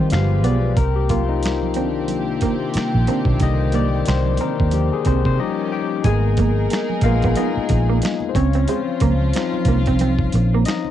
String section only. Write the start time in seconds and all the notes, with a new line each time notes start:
Already playing: F4
0.10 G4 G#4 B4
0.76 C3 A#3 C4 G4
5.38 D#3 A#3 C#4 G4
6.04 D#4 G#4 A#4
8.35 F3 F4